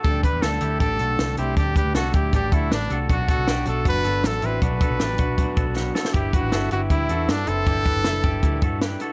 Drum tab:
HH |x-x-x-x-x-x-x-x-|x-x-x-x-x-x-x-x-|x-x-x-x-x-x-x-x-|x-x-x-x-x-x-----|
SD |----o-------o---|----o-------o---|----o-------o---|----o-------o-oo|
BD |o-o-----o-------|o-o---o-o-o-----|o-o-----o-------|o-o---o-o-o-----|

HH |x-x-x-x-x-x-x-x-|x-x-x-x-x-x-x-x-|
SD |----o-------o---|----o-------o---|
BD |o-o-----o-------|o-o---o-o-o-----|